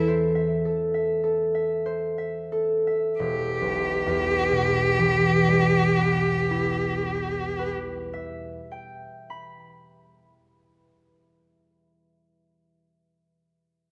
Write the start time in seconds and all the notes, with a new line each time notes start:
Already playing: E2 E3 A4 E5
0.08 C5
0.35 E5
0.65 A4
0.94 E5
1.23 A4
1.55 E5
1.86 C5
2.18 E5
2.52 A4
2.87 E5
3.19 E1 G4
3.61 B1
4.06 E2
4.52 B2
4.99 E3
5.48 G3
5.98 B3
6.51 E4
7.03 G4
7.59 B4
8.13 E5
8.71 G5
9.30 B5